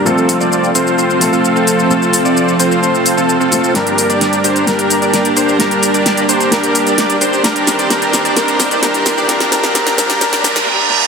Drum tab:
HH |--o---o---o---o-|--o---o---o---o-|xxoxxxoxxxoxxxo-|xxoxxxoxxxoxxxo-|
SH |xxxxxxxxxxxxxxxx|xxxxxxxxxxxxxxxx|xxxxxxxxxxxxxxxx|xxxxxxxxxxxxxxxx|
SD |----------------|----------------|o---o---o---o---|o---o---o---o---|

HH |xxoxxxoxxxoxxxo-|xxoxxxoxxxox----|
SH |xxxxxxxxxxxxxxxx|xxxxxxxxxxxx----|
SD |o-o-o-o-o-o-o-o-|oooooooooooo----|